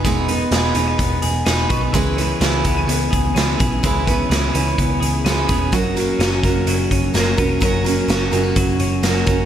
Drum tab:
HH |xxxxxxxx|xxxxxxxx|xxxxxxxx|xxxxxxxx|
SD |--o---o-|--o---o-|--o---o-|--o---o-|
BD |o---o--o|o--o-o-o|oo--o--o|o--o-o-o|

HH |xxxxxxxx|
SD |--o---o-|
BD |o---o--o|